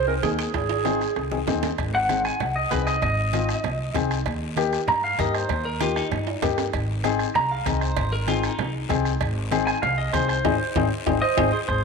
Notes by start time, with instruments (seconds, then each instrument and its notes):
Already playing: upright bass C2
0.07 upright piano C4 D#4 G#4, clarinet A#4
0.23 upright bass D#2, upright piano C4 D#4 G#4, clarinet G#4, bombo low, bombo rim, high conga, high timbale, low timbale, short guiro
0.39 clarinet G#4, bombo rim, high timbale, short guiro
0.54 upright bass G#1, bombo low, bombo rim, high conga, high timbale, long guiro
0.69 high timbale
0.84 upright piano C4 D#4 G#4, bombo rim, high conga, high timbale, short guiro
1.01 bombo rim, short guiro
1.16 upright bass C2, bombo rim, high conga, low timbale, long guiro
1.31 upright piano C4 D#4 G#4, high conga
1.47 upright bass D#2, upright piano C4 D#4 G#4, bombo low, bombo rim, low conga, low timbale, short guiro
1.63 bombo rim, low conga, low timbale, short guiro
1.78 upright bass G#1, bombo low, bombo rim, cowbell, high conga, long guiro
1.95 clean electric guitar F#5
2.09 upright piano C4 D#4 G#4, bombo rim, cowbell, high conga, short guiro
2.25 clean electric guitar G#5, bombo rim, short guiro
2.40 upright bass C2, clean electric guitar F#5, bombo rim, cowbell, high conga, low conga, long guiro
2.56 clean electric guitar D#5
2.71 upright bass C2, upright piano C4 D#4 G#4, clean electric guitar B4, bombo low, bombo rim, cowbell, high conga, short guiro
2.87 clean electric guitar D#5, bombo rim, short guiro
3.02 upright bass G#1, clean electric guitar D#5, bombo low, bombo rim, cowbell, high conga, low conga, long guiro
3.33 upright piano C4 D#4 F4, bombo rim, cowbell, high conga, short guiro
3.49 bombo rim, short guiro
3.64 upright bass C2, bombo rim, cowbell, high conga, low conga, long guiro
3.94 upright bass C2, upright piano C4 D#4 G#4, bombo low, bombo rim, cowbell, high conga, low conga, short guiro
4.11 bombo rim, short guiro
4.26 upright bass D#2, bombo low, bombo rim, cowbell, high conga, long guiro
4.56 upright piano A#3 D#4 G4, bombo rim, cowbell, high conga, short guiro
4.73 bombo rim, short guiro
4.88 upright bass G2, clean electric guitar A#5, bombo rim, cowbell, high conga, low conga, long guiro
5.04 clean electric guitar F5
5.18 upright bass G2, upright piano A#3 D#4 G4, clean electric guitar D#5, bombo low, bombo rim, cowbell, high conga, short guiro
5.34 clean electric guitar C5, bombo rim, short guiro
5.49 upright bass D#2, bombo low, bombo rim, cowbell, high conga, low conga, long guiro
5.65 clean electric guitar A#4
5.80 upright piano A#3 D#4 G4, clean electric guitar F4, bombo rim, cowbell, high conga, short guiro
5.96 clean electric guitar D#4, bombo rim, short guiro
6.12 upright bass G2, bombo rim, cowbell, high conga, low conga, long guiro
6.27 high timbale
6.42 upright bass G2, upright piano A#3 D#4 G4, bombo low, bombo rim, cowbell, high conga, low conga, low timbale, short guiro
6.58 bombo rim, low timbale, short guiro
6.73 upright bass G#1, bombo low, bombo rim, cowbell, high conga, long guiro
7.04 upright piano C4 D#4 G#4, bombo rim, cowbell, high conga, short guiro
7.19 bombo rim, short guiro
7.35 upright bass C2, clean electric guitar A#5, bombo rim, cowbell, high conga, low conga, long guiro
7.51 clean electric guitar F5
7.66 upright bass C2, upright piano C4 D#4 G#4, clean electric guitar D#5, bombo low, bombo rim, cowbell, high conga, short guiro
7.81 clean electric guitar C5, bombo rim, short guiro
7.97 upright bass G#1, bombo low, bombo rim, cowbell, high conga, low conga, long guiro
8.12 clean electric guitar A#4
8.27 upright piano C4 D#4 G#4, clean electric guitar F4, bombo rim, cowbell, high conga, short guiro
8.43 clean electric guitar D#4, bombo rim, short guiro
8.58 upright bass C2, bombo rim, cowbell, high conga, low conga, long guiro
8.89 upright bass C2, upright piano C4 D#4 G#4, bombo low, bombo rim, cowbell, high conga, low conga, short guiro
9.05 bombo rim, short guiro
9.20 upright bass G#1, bombo low, bombo rim, cowbell, high conga, long guiro
9.51 upright piano C4 D#4 G#4, bombo rim, cowbell, high conga, short guiro
9.67 clean electric guitar G#5, bombo rim, short guiro
9.82 upright bass C2, clean electric guitar F5, bombo rim, cowbell, high conga, low conga, long guiro
9.98 clean electric guitar D#5
10.13 upright bass C2, upright piano C4 D#4 G#4, clean electric guitar C5, bombo low, bombo rim, cowbell, high conga, short guiro
10.28 clean electric guitar C5, bombo rim, short guiro
10.45 upright bass G#1, upright piano C4 D#4 G#4, bombo low, high conga, high timbale, long guiro
10.76 upright bass G#1, upright piano C4 D#4 G#4, bombo low, high conga, high timbale, long guiro
11.06 upright bass G#1, upright piano C4 D#4 G#4, bombo low, high conga, high timbale, long guiro
11.22 clarinet C5, clean electric guitar D#5
11.37 upright bass G#1, upright piano C4 D#4 G#4, bombo low, high conga, high timbale, long guiro
11.53 clarinet G#4, clean electric guitar C5
11.68 upright bass G#1, clarinet G#4, clean electric guitar C5, bombo low, bombo rim, high conga, long guiro